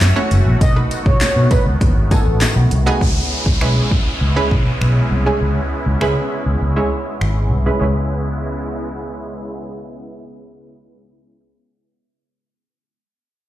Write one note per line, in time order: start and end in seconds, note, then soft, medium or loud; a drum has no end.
0.00 0.10 F#2 loud
0.00 0.59 E3 medium
0.00 2.97 A3 medium
0.00 0.59 C#4 medium
0.00 2.97 F#4 medium
0.00 0.13 E5 medium
0.00 snare medium
0.00 clap loud
0.00 closed hi-hat medium
0.00 tambourine medium
0.16 0.61 A3 medium
0.16 0.61 C#4 medium
0.16 0.61 E4 medium
0.16 0.61 F#4 medium
0.16 0.61 C#5 medium
0.31 0.40 F#1 loud
0.31 closed hi-hat medium
0.31 tambourine soft
0.46 0.55 A#1 medium
0.61 0.79 B1 loud
0.61 2.99 D#3 medium
0.61 2.99 B3 medium
0.61 0.73 D#5 loud
0.61 kick loud
0.61 closed hi-hat loud
0.61 tambourine medium
0.76 1.35 A3 medium
0.76 1.35 B3 medium
0.76 1.35 D#4 medium
0.76 1.35 F#4 medium
0.76 1.35 B4 medium
0.91 closed hi-hat medium
0.91 tambourine soft
1.06 1.15 B1 loud
1.06 1.18 C#5 medium
1.06 kick loud
1.21 1.45 C#5 medium
1.21 muted fingered electric bass stroke medium
1.21 snare loud
1.21 clap loud
1.21 closed hi-hat loud
1.21 tambourine loud
1.36 1.45 B2 medium
1.51 1.98 A3 medium
1.51 1.98 B3 medium
1.51 1.98 D#4 medium
1.51 1.98 F#4 medium
1.51 1.63 B4 medium
1.51 1.98 B4 medium
1.51 kick medium
1.51 closed hi-hat medium
1.51 tambourine soft
1.66 1.75 C#2 medium
1.81 1.90 D#2 loud
1.81 kick loud
1.81 closed hi-hat medium
1.96 2.05 G#1 loud
2.11 2.70 A3 medium
2.11 2.70 B3 medium
2.11 2.70 D#4 medium
2.11 2.70 F#4 medium
2.11 2.35 A4 medium
2.11 2.70 G#5 medium
2.11 kick loud
2.11 closed hi-hat medium
2.11 tambourine soft
2.26 2.44 A1 medium
2.41 snare medium
2.41 clap loud
2.41 closed hi-hat medium
2.41 tambourine medium
2.56 2.65 B1 medium
2.71 2.89 C2 loud
2.71 closed hi-hat medium
2.86 3.01 A3 loud
2.86 3.01 B3 loud
2.86 3.01 D#4 medium
2.86 3.01 F#4 medium
2.86 3.01 G#4 loud
3.01 3.19 C#2 loud
3.01 7.77 G#3 medium
3.01 7.77 B3 medium
3.01 7.77 C#4 medium
3.01 7.77 E4 medium
3.01 kick loud
3.01 downlifter medium
3.46 3.55 C#2 loud
3.46 kick medium
3.61 3.79 B1 loud
3.61 4.20 G#3 loud
3.61 4.20 C#4 medium
3.61 4.20 E4 medium
3.61 4.20 B4 loud
3.61 finger snap loud
3.91 kick medium
4.21 4.39 C#2 medium
4.36 5.07 G#3 medium
4.36 5.07 C#4 medium
4.36 5.07 E4 medium
4.36 5.07 B4 loud
4.51 4.69 B1 medium
4.51 kick medium
4.81 4.99 B1 medium
4.81 finger snap loud
5.11 5.29 C2 medium
5.26 5.85 G#3 medium
5.26 5.85 C#4 medium
5.26 5.85 E4 medium
5.26 5.85 G#4 medium
5.41 5.59 C#2 loud
5.86 5.95 C#2 medium
6.01 6.19 C#3 medium
6.01 6.60 G#3 medium
6.01 6.60 C#4 medium
6.01 6.60 E4 medium
6.01 6.60 B4 loud
6.01 finger snap loud
6.46 6.55 C#2 medium
6.61 6.79 C#2 medium
6.76 7.47 G#3 medium
6.76 7.47 C#4 medium
6.76 7.47 E4 medium
6.76 7.47 C#5 loud
7.21 7.51 G#1 medium
7.21 finger snap loud
7.51 7.69 C2 medium
7.66 7.78 G#3 medium
7.66 7.80 C#4 medium
7.66 7.81 E4 medium
7.66 7.81 B4 medium
7.79 11.40 C#2 medium
7.79 10.97 C#3 medium
7.79 11.38 G#3 medium
7.79 10.97 G#3 medium
7.79 10.97 B3 medium
7.79 11.40 C#4 medium
7.79 10.97 E4 medium
7.79 11.41 E4 medium
7.79 11.42 B4 medium